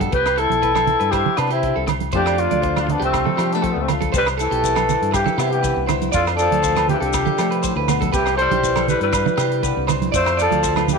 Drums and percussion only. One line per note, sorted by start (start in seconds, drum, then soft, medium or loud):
0.00 kick medium
0.00 closed hi-hat soft
0.00 high conga medium
0.12 kick medium
0.12 closed hi-hat soft
0.26 cross-stick medium
0.26 low agogo medium
0.38 closed hi-hat soft
0.50 closed hi-hat soft
0.50 high conga medium
0.63 kick medium
0.63 closed hi-hat soft
0.75 cross-stick medium
0.75 high conga medium
0.75 low agogo medium
0.87 closed hi-hat soft
0.87 low conga medium
1.00 closed hi-hat soft
1.13 kick medium
1.13 cross-stick medium
1.13 closed hi-hat soft
1.13 low agogo medium
1.26 high conga medium
1.26 low conga medium
1.37 cross-stick medium
1.37 closed hi-hat soft
1.37 low agogo medium
1.50 closed hi-hat soft
1.63 kick medium
1.63 closed hi-hat soft
1.88 cross-stick medium
1.88 closed hi-hat soft
1.88 low conga medium
1.88 low agogo medium
2.00 closed hi-hat soft
2.00 high conga medium
2.12 kick medium
2.12 closed hi-hat soft
2.26 cross-stick medium
2.26 low agogo medium
2.38 closed hi-hat soft
2.51 closed hi-hat soft
2.51 high conga medium
2.63 kick medium
2.63 closed hi-hat soft
2.76 cross-stick medium
2.76 high conga medium
2.76 low agogo medium
2.89 closed hi-hat soft
2.89 low conga medium
3.02 closed hi-hat soft
3.13 kick medium
3.13 cross-stick medium
3.13 closed hi-hat soft
3.13 low agogo medium
3.27 high conga medium
3.27 low conga medium
3.38 cross-stick medium
3.38 closed hi-hat soft
3.38 low agogo medium
3.52 closed hi-hat soft
3.64 kick medium
3.64 closed hi-hat soft
3.88 cross-stick medium
3.88 closed hi-hat soft
3.88 low conga medium
3.88 low agogo medium
4.01 kick medium
4.01 closed hi-hat soft
4.01 high conga medium
4.14 kick medium
4.14 closed hi-hat soft
4.14 maracas medium
4.26 cross-stick medium
4.26 low agogo medium
4.26 maracas soft
4.39 closed hi-hat soft
4.39 maracas medium
4.52 closed hi-hat soft
4.64 kick medium
4.64 closed hi-hat soft
4.64 maracas medium
4.76 cross-stick medium
4.76 high conga medium
4.76 low agogo medium
4.76 maracas soft
4.89 closed hi-hat soft
4.89 low conga medium
4.89 maracas medium
5.02 closed hi-hat soft
5.14 kick medium
5.14 cross-stick medium
5.14 closed hi-hat soft
5.14 low agogo medium
5.14 maracas medium
5.26 high conga medium
5.26 low conga medium
5.26 maracas soft
5.38 cross-stick medium
5.38 closed hi-hat soft
5.38 low agogo medium
5.38 maracas medium
5.52 closed hi-hat soft
5.64 kick medium
5.64 closed hi-hat soft
5.64 maracas medium
5.89 cross-stick medium
5.89 closed hi-hat soft
5.89 low conga medium
5.89 low agogo medium
5.89 maracas medium
6.01 closed hi-hat soft
6.01 high conga medium
6.01 maracas soft
6.13 kick medium
6.13 closed hi-hat medium
6.13 maracas medium
6.27 cross-stick medium
6.27 low agogo medium
6.27 maracas soft
6.38 closed hi-hat soft
6.38 maracas medium
6.52 closed hi-hat medium
6.52 high conga medium
6.64 kick medium
6.64 closed hi-hat medium
6.64 maracas medium
6.76 cross-stick medium
6.76 high conga medium
6.76 low agogo medium
6.76 maracas soft
6.88 closed hi-hat soft
6.88 low conga medium
7.02 closed hi-hat soft
7.13 kick medium
7.13 cross-stick medium
7.13 closed hi-hat soft
7.13 low agogo medium
7.13 maracas medium
7.27 high conga medium
7.27 low conga medium
7.27 maracas soft
7.38 cross-stick medium
7.38 closed hi-hat medium
7.38 low agogo medium
7.38 maracas medium
7.52 closed hi-hat soft
7.63 kick medium
7.63 closed hi-hat soft
7.63 maracas medium
7.88 cross-stick medium
7.88 closed hi-hat soft
7.88 low conga medium
7.88 low agogo medium
7.88 maracas medium
8.02 kick medium
8.02 closed hi-hat soft
8.02 high conga medium
8.02 maracas soft
8.13 kick medium
8.13 closed hi-hat soft
8.13 maracas medium
8.26 cross-stick medium
8.26 low agogo medium
8.26 maracas soft
8.38 closed hi-hat soft
8.51 closed hi-hat soft
8.51 high conga medium
8.63 kick medium
8.63 closed hi-hat soft
8.63 maracas medium
8.76 cross-stick medium
8.76 high conga medium
8.76 low agogo medium
8.76 maracas soft
8.88 closed hi-hat soft
8.88 low conga medium
8.88 maracas medium
9.01 closed hi-hat soft
9.13 kick medium
9.13 cross-stick medium
9.13 closed hi-hat soft
9.13 low agogo medium
9.13 maracas medium
9.26 high conga medium
9.26 low conga medium
9.26 maracas soft
9.38 cross-stick medium
9.38 closed hi-hat soft
9.38 low agogo medium
9.38 maracas medium
9.52 closed hi-hat soft
9.63 kick medium
9.63 closed hi-hat soft
9.63 maracas medium
9.88 cross-stick medium
9.88 closed hi-hat soft
9.88 low conga medium
9.88 low agogo medium
9.88 maracas medium
10.02 closed hi-hat soft
10.02 high conga medium
10.02 maracas soft
10.14 kick medium
10.14 closed hi-hat soft
10.14 maracas loud
10.26 cross-stick medium
10.26 low agogo medium
10.26 maracas soft
10.39 closed hi-hat soft
10.39 maracas medium
10.51 closed hi-hat soft
10.51 high conga medium
10.51 maracas soft
10.64 kick medium
10.64 closed hi-hat soft
10.64 maracas loud
10.76 cross-stick medium
10.76 high conga medium
10.76 low agogo medium
10.88 closed hi-hat soft
10.88 high conga medium
10.88 low conga medium
10.88 maracas medium